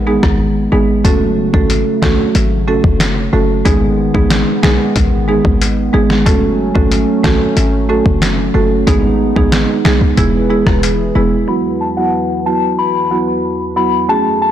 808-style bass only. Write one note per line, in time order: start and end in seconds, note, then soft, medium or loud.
0.00 0.19 A1 medium
0.23 0.68 G#1 loud
0.72 1.06 G#1 medium
1.05 1.50 F#1 loud
1.54 1.84 G#1 medium
2.02 2.17 A1 medium
2.35 2.80 G#1 loud
2.84 3.29 F#1 medium
3.33 3.63 F#1 medium
3.66 4.10 G#1 loud
4.15 4.45 A1 medium
4.63 4.78 B1 medium
4.96 5.41 A1 medium
5.45 5.90 G#1 loud
5.94 6.28 G#1 medium
6.26 6.71 F#1 loud
6.76 7.05 G#1 medium
7.24 7.39 A1 medium
7.57 8.02 G#1 medium
8.06 8.51 F#1 medium
8.55 8.85 F#1 medium
8.87 9.32 G#1 loud
9.36 9.66 A1 medium
9.85 10.00 B1 medium
10.18 10.63 E1 loud
10.67 11.12 E1 loud
11.16 11.46 E1 medium